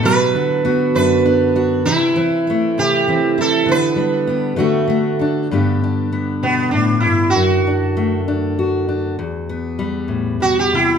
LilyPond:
<<
  \new Staff \with { instrumentName = "Sitar" } { \time 6/8 \key g \major \tempo 4. = 66 b'4. b'4 r8 | e'4. g'4 a'8 | b'2~ b'8 r8 | r4. b8 d'8 e'8 |
fis'4. r4. | r2 fis'16 g'16 e'8 | }
  \new Staff \with { instrumentName = "Steel-string acoustic guitar" } { \time 6/8 \key g \major fis8 d'8 fis'8 d'8 b8 d'8 | e8 c'8 e'8 c'8 e8 c'8 | b8 d'8 g'8 a8 a8 d'8 | r2. |
r2. | r2. | }
  \new Staff \with { instrumentName = "Steel-string acoustic guitar" } { \time 6/8 \key g \major << { r4 b4 d'8 fis'8 | r4 a4 c'8 e'8 | r4 b8 <a d' fis'>4 d'8 | <d b d' g'>8 d'8 b2 |
r8 d'8 a8 d'8 fis'8 d'8 | r8 b8 g2 | } \\ { b,8 d4 fis,4. | c8 e4 c4. | d8 g4 d8 a4 | g,4. b,8 a,8 g,8 |
fis,2. | e,4. a,8 b,8 c8 | } >> }
>>